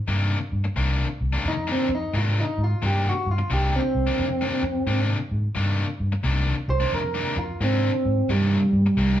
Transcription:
0.08 fingered electric bass G2, overdriven electric guitar C3 D#3 A#3 D4
0.52 fingered electric bass G2
0.64 muted overdriven electric guitar stroke
0.76 fingered electric bass C2, overdriven electric guitar C3 D#3 A#3 D4
1.21 fingered electric bass C2
1.33 overdriven electric guitar C3 D#3 A#3 D4
1.45 fingered electric bass F2, clean electric guitar D#4
1.67 overdriven electric guitar C3 D#3 A#3 D4
1.72 clean electric guitar C4
1.89 fingered electric bass F2, muted overdriven electric guitar stroke
1.95 clean electric guitar D#4
2.13 fingered electric bass G#2, overdriven electric guitar C3 D#3 A#3 D4
2.18 clean electric guitar F4
2.41 clean electric guitar D#4
2.58 fingered electric bass G#2
2.64 clean electric guitar F4
2.82 fingered electric bass G2, overdriven electric guitar C3 D#3 A#3 D4
2.86 clean electric guitar G4
3.09 clean electric guitar F#4
3.26 fingered electric bass G2
3.31 clean electric guitar F4
3.38 muted overdriven electric guitar stroke
3.50 fingered electric bass C2, overdriven electric guitar C3 D#3 A#3 D4, clean electric guitar G4
3.76 clean electric guitar C4
3.95 fingered electric bass C2
4.07 overdriven electric guitar C3 D#3 A#3 D4
4.19 fingered electric bass F2
4.41 overdriven electric guitar C3 D#3 A#3 D4
4.63 fingered electric bass F2, muted overdriven electric guitar stroke
4.86 fingered electric bass G#2, overdriven electric guitar C3 D#3 A#3 D4
5.31 fingered electric bass G#2
5.55 fingered electric bass G2, overdriven electric guitar C3 D#3 A#3 D4
6.00 fingered electric bass G2
6.12 muted overdriven electric guitar stroke
6.24 fingered electric bass C2, overdriven electric guitar C3 D#3 A#3 D4
6.68 fingered electric bass C2, clean electric guitar C5
6.80 overdriven electric guitar C3 D#3 A#3 D4
6.93 fingered electric bass F2, clean electric guitar A#4
7.14 overdriven electric guitar C3 D#3 A#3 D4
7.37 fingered electric bass F2, clean electric guitar F4, muted overdriven electric guitar stroke
7.61 fingered electric bass G#2, overdriven electric guitar C3 D#3 A#3 D4, clean electric guitar C4
8.05 fingered electric bass G#2
8.29 fingered electric bass G2, overdriven electric guitar C3 D#3 A#3 D4, clean electric guitar G3
8.73 fingered electric bass G2
8.86 muted overdriven electric guitar stroke
8.97 fingered electric bass C2, overdriven electric guitar C3 D#3 A#3 D4

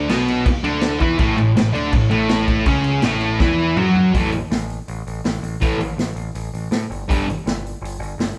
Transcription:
0.09 picked electric bass B1, distorted electric guitar B2 B3, snare, crash
0.28 crash
0.46 muted picked electric bass stroke, muted distorted electric guitar stroke, kick, crash
0.64 picked electric bass D2, distorted electric guitar D3 D4, crash
0.81 snare, crash
1.00 picked electric bass E2, distorted electric guitar E3 E4, kick, crash
1.19 picked electric bass A1, distorted electric guitar A2 A3, kick, crash
1.35 picked electric bass A1, distorted electric guitar A2, crash
1.54 picked electric bass A1, distorted electric guitar A2, snare, crash
1.73 picked electric bass D2, distorted electric guitar D3 D4, crash
1.92 picked electric bass A1, distorted electric guitar A2, kick, crash
2.10 picked electric bass A1, distorted electric guitar A2 A3, crash
2.29 snare, crash
2.48 kick, crash
2.66 picked electric bass C#2, distorted electric guitar C#3 C#4, kick, crash
2.84 crash
3.02 picked electric bass A1, distorted electric guitar A2 A3, snare, crash
3.21 crash
3.40 picked electric bass E2, distorted electric guitar E3 E4, kick, snare
3.76 picked electric bass F#2, distorted electric guitar F#3 F#4, mid tom
3.95 floor tom
4.14 picked electric bass A1, distorted electric guitar A2 E3 A3, kick, open hi-hat
4.32 open hi-hat
4.51 picked electric bass A1, snare, open hi-hat
4.70 open hi-hat
4.88 picked electric bass A1, open hi-hat
5.07 picked electric bass A1, open hi-hat
5.24 picked electric bass A1, snare, open hi-hat
5.42 picked electric bass A1, open hi-hat
5.61 picked electric bass A1, distorted electric guitar A2 E3 A3, kick, open hi-hat
5.78 picked electric bass A1, open hi-hat
5.97 picked electric bass A1, snare, open hi-hat
6.15 picked electric bass A1, open hi-hat
6.35 picked electric bass A1, open hi-hat
6.54 picked electric bass A1, open hi-hat
6.71 picked electric bass A2, snare, open hi-hat
6.90 picked electric bass G1, open hi-hat
7.08 picked electric bass G1, distorted electric guitar G2 D3 G3, kick, open hi-hat
7.30 open hi-hat
7.46 picked electric bass G1, snare, open hi-hat
7.66 open hi-hat
7.82 picked electric bass G1, open hi-hat
7.99 picked electric bass G1, open hi-hat
8.18 picked electric bass G1, snare, open hi-hat

